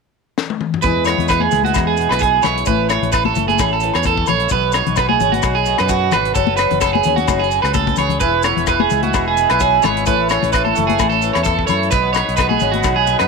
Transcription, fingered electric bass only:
0.84 1.14 E2 medium
1.18 1.47 E2 medium
1.53 1.72 C#2 medium
1.77 2.06 E2 medium
2.11 2.39 B1 medium
2.44 2.64 B1 medium
2.68 2.98 A1 medium
3.02 3.31 A1 medium
3.36 3.56 F#1 medium
3.60 3.90 A1 medium
3.95 4.24 E2 medium
4.29 4.48 A#1 medium
4.52 4.82 B1 medium
4.87 5.16 B1 medium
5.20 5.40 G#1 medium
5.44 5.74 B1 medium
5.80 6.09 F#2 medium
6.13 6.33 G#1 medium
6.36 6.66 F#1 medium
6.71 7.00 F#1 medium
7.05 7.25 D#2 medium
7.28 7.59 F#1 medium
7.64 7.93 C#2 medium
7.98 8.18 C#2 medium
8.22 8.52 E1 medium
8.57 8.86 E1 medium
8.92 9.11 C#2 medium
9.15 9.45 E1 medium
9.51 9.79 B1 medium
9.85 10.04 G#1 medium
10.08 10.38 A1 medium
10.43 10.71 A1 medium
10.78 10.97 F#1 medium
11.01 11.30 A1 medium
11.36 11.64 E2 medium
11.70 11.89 F#2 medium
11.92 12.22 B1 medium
12.29 12.57 B1 medium
12.63 12.82 G#1 medium
12.85 13.14 B1 medium
13.21 13.28 F#2 medium

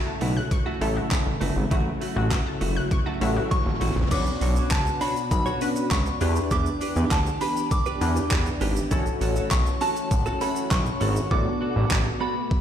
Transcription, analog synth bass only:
0.21 0.40 B1 medium
0.81 1.00 A1 loud
1.26 1.36 A1 loud
1.41 1.51 G1 loud
1.56 1.66 G#1 loud
1.71 1.90 A1 loud
2.16 2.35 A1 loud
2.61 2.80 F#1 loud
3.21 3.40 A1 loud
3.66 3.76 A1 loud
3.81 3.91 A1 loud
3.96 4.06 A#1 loud
4.11 4.30 B1 loud
4.41 4.60 B1 loud
4.71 4.90 C#2 medium
5.31 5.50 B1 loud
5.91 6.10 C#2 loud
6.21 6.40 E2 loud
6.51 6.70 E2 loud
6.96 7.06 E2 loud
7.11 7.30 D2 loud
8.01 8.20 E2 loud
8.31 8.50 E2 loud
8.61 8.80 G#1 loud
8.91 9.10 A1 loud
9.21 9.40 A1 loud
9.51 9.70 B1 medium
10.11 10.30 A1 loud
10.71 10.90 B1 loud
11.01 11.20 G#1 loud
11.31 11.50 A1 loud
11.76 11.86 A1 loud
11.91 12.10 A1 medium

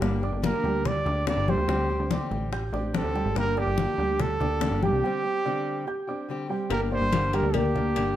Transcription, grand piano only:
0.00 0.15 G3 medium
0.00 0.15 G4 medium
0.00 0.16 G5 medium
0.23 0.57 D4 medium
0.23 0.57 D5 medium
0.23 0.58 D6 medium
0.65 0.99 G3 medium
0.65 0.99 G4 medium
0.65 0.99 G5 medium
1.06 1.41 D4 medium
1.06 1.41 D5 medium
1.06 1.41 D6 medium
1.48 1.65 G3 medium
1.48 1.65 G4 medium
1.48 1.66 G5 medium
1.69 2.03 G3 medium
1.69 2.03 G4 medium
1.69 2.03 G5 medium
2.11 2.45 D4 medium
2.11 2.45 D5 medium
2.11 2.45 D6 medium
2.52 2.70 G4 medium
2.52 2.70 G5 medium
2.52 2.70 G6 medium
2.73 3.08 D4 medium
2.73 3.08 D5 medium
2.73 3.08 D6 medium
3.15 3.49 G3 medium
3.15 3.50 G4 medium
3.15 3.50 G5 medium
3.57 3.91 D4 medium
3.57 3.92 D5 medium
3.57 3.92 D6 medium
3.99 4.33 G3 medium
3.99 4.33 G4 medium
3.99 4.33 G5 medium
4.41 4.75 D4 medium
4.41 4.75 D5 medium
4.41 4.75 D6 medium
4.83 5.00 G3 medium
4.83 5.00 G4 medium
4.83 5.00 G5 medium
5.03 5.38 G3 medium
5.03 5.38 G4 medium
5.03 5.38 G5 medium
5.45 5.80 D4 medium
5.45 5.80 D5 medium
5.45 5.80 D6 medium
5.87 6.04 G4 medium
5.87 6.04 G5 medium
5.87 6.05 G6 medium
6.08 6.42 D4 medium
6.08 6.42 D5 medium
6.08 6.43 D6 medium
6.50 6.67 G3 medium
6.50 6.67 G4 medium
6.50 6.67 G5 medium
6.92 7.26 A#3 medium
6.92 7.26 A#4 medium
6.92 7.26 D5 medium
7.33 7.50 G3 medium
7.33 7.51 G4 medium
7.33 7.51 G5 medium
7.54 7.71 A#3 medium
7.54 7.71 A#4 medium
7.54 7.72 D5 medium
7.75 8.09 A#3 medium
7.75 8.10 A#4 medium
7.75 8.10 D5 medium

